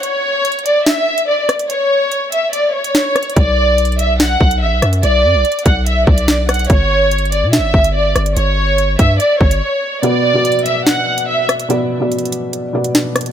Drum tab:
HH |x-----------------------x---x---x---x-----------x-----------------x-----------------x-----x-----|x-----------------------x-----------x-----------x-----------------x-----x-----------x---x---x---|x-----------------------x---x---x---x-----------x-----------------x-----------------x-----x-----|x-----------------------x---x---x---x-----------x-----------------x-----x-----------x--x--x--x--|
SD |------------------------------------------------o-----------------------------------r-----------|------------------------------------------------------------------------o-----------r-----------|------------------------------------------------o-----------------------------------r-----------|------------------------------------------------------------------------o-----------r-----------|
BD |------------------------------------------------------------------------------------------------|------------------------------------------------------------------------------------------------|o-----------------------------------------------------------o-----------------------------------|------------------------------------o-----------------------o-----------------------------------|

HH |x-----------------------x---x---x---x-----------x-----------------x-----------------x-----x-----|x-----------------------x-----------x-----------x-----------------x-----------------------------|x-----------------------x---x---x---x-----------x-----------------x-----------------x-----x-----|x-----------------------x---x---x---x-----------x-----------------x-----x-----------x--x--x-----|
SD |------------------------------------------------o-----------------------------------r-----------|------------------------------------------------------------------------------------------------|------------------------------------------------o-----------------------------------r-----------|------------------------------------------------------------------------o-----------r-----------|
BD |o-----------------------------------------------------------o-----------------------------------|------------------------------------o-----------------------o-----------------------------------|------------------------------------------------------------------------------------------------|------------------------------------------------------------------------------------------------|